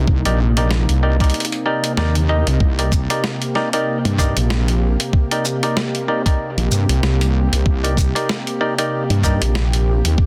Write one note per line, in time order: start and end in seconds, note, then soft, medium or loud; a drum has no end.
0.00 0.23 C2 medium
0.00 10.26 C3 medium
0.00 10.26 A#3 medium
0.00 2.60 D#4 medium
0.08 kick loud
0.25 0.86 A#1 medium
0.25 0.40 D#4 loud
0.25 0.40 G4 medium
0.25 0.40 A#4 medium
0.25 0.40 D5 loud
0.25 closed hi-hat soft
0.57 0.72 D#4 medium
0.57 0.72 G4 medium
0.57 0.72 A#4 medium
0.57 0.72 D5 medium
0.57 cross-stick soft
0.57 closed hi-hat medium
0.71 snare loud
0.89 1.32 C2 medium
0.89 closed hi-hat soft
1.03 1.16 D#4 medium
1.03 1.16 G4 medium
1.03 1.16 A#4 medium
1.03 1.17 D5 medium
1.20 1.46 D#4 medium
1.20 1.46 G4 medium
1.20 1.46 A#4 medium
1.20 1.46 D5 medium
1.20 kick loud
1.20 closed hi-hat soft
1.24 closed hi-hat soft
1.30 closed hi-hat soft
1.34 closed hi-hat soft
1.40 closed hi-hat medium
1.45 closed hi-hat medium
1.52 closed hi-hat soft
1.66 1.92 D#4 loud
1.66 1.92 G4 medium
1.66 1.92 A#4 medium
1.66 1.92 D5 loud
1.84 closed hi-hat medium
1.97 2.44 D#2 loud
1.97 2.16 D#4 medium
1.97 2.16 G4 medium
1.97 2.16 A#4 medium
1.97 2.16 D5 loud
1.97 snare loud
2.15 closed hi-hat medium
2.29 2.47 D#4 loud
2.29 2.47 G4 medium
2.29 2.47 A#4 medium
2.29 2.47 D#5 loud
2.47 2.58 C2 medium
2.47 closed hi-hat medium
2.60 3.07 C2 loud
2.60 10.26 G4 medium
2.60 kick loud
2.79 2.93 D#4 medium
2.79 2.93 G4 medium
2.79 2.93 A#4 medium
2.79 2.93 D5 medium
2.79 closed hi-hat soft
2.92 kick loud
2.92 shaker medium
3.10 3.24 D#4 medium
3.10 3.24 G4 medium
3.10 3.24 A#4 medium
3.10 3.24 D5 loud
3.10 cross-stick medium
3.10 closed hi-hat medium
3.24 snare loud
3.42 closed hi-hat soft
3.55 3.69 D#4 medium
3.55 3.69 G4 medium
3.55 3.69 A#4 medium
3.55 3.69 D5 loud
3.55 cross-stick medium
3.55 snare soft
3.73 3.98 D#4 medium
3.73 3.98 G4 medium
3.73 3.98 A#4 medium
3.73 3.98 D5 loud
3.73 closed hi-hat medium
4.05 4.34 G2 loud
4.05 closed hi-hat soft
4.18 4.37 D#4 medium
4.18 4.37 G4 medium
4.18 4.37 A#4 medium
4.18 4.37 D5 loud
4.18 kick medium
4.18 cross-stick medium
4.18 shaker medium
4.36 4.97 A#1 medium
4.36 closed hi-hat medium
4.50 snare loud
4.68 closed hi-hat soft
5.00 closed hi-hat medium
5.13 kick loud
5.31 5.45 D#4 loud
5.31 5.45 G4 medium
5.31 5.45 A#4 medium
5.31 5.45 D5 loud
5.31 closed hi-hat soft
5.45 shaker medium
5.63 5.77 D#4 medium
5.63 5.77 G4 medium
5.63 5.77 A#4 medium
5.63 5.77 D5 loud
5.63 cross-stick medium
5.63 closed hi-hat medium
5.77 snare loud
5.95 closed hi-hat soft
6.08 6.22 D#4 medium
6.08 6.22 G4 medium
6.08 6.22 A#4 medium
6.08 6.22 D5 medium
6.26 6.51 D#4 medium
6.26 6.51 G4 medium
6.26 6.51 A#4 medium
6.26 6.51 D5 medium
6.26 kick loud
6.26 closed hi-hat medium
6.57 6.69 A#1 loud
6.57 closed hi-hat soft
6.71 6.86 G2 loud
6.71 shaker medium
6.89 7.00 C2 medium
6.89 closed hi-hat medium
7.02 7.49 C2 medium
7.02 snare loud
7.21 closed hi-hat medium
7.52 7.64 C2 loud
7.52 closed hi-hat medium
7.66 8.12 C2 loud
7.66 kick loud
7.84 7.98 D#4 medium
7.84 7.98 G4 medium
7.84 7.98 A#4 medium
7.84 7.98 D5 medium
7.84 closed hi-hat medium
7.97 kick loud
7.97 shaker medium
8.15 8.29 D#4 medium
8.15 8.29 G4 medium
8.15 8.29 A#4 medium
8.15 8.29 D5 loud
8.15 cross-stick medium
8.15 closed hi-hat medium
8.29 snare loud
8.47 closed hi-hat soft
8.61 8.74 D#4 medium
8.61 8.74 G4 medium
8.61 8.74 A#4 medium
8.61 8.74 D5 loud
8.78 9.04 D#4 medium
8.78 9.04 G4 medium
8.78 9.04 A#4 medium
8.78 9.04 D5 loud
8.78 closed hi-hat medium
9.10 9.39 G2 loud
9.10 closed hi-hat soft
9.23 9.42 D#4 loud
9.23 9.42 G4 medium
9.23 9.42 A#4 medium
9.23 9.42 D5 loud
9.23 kick medium
9.23 cross-stick medium
9.23 shaker medium
9.42 10.02 A#1 medium
9.42 closed hi-hat medium
9.55 snare loud
9.73 closed hi-hat medium
10.04 10.16 D#2 loud
10.04 closed hi-hat medium
10.18 kick loud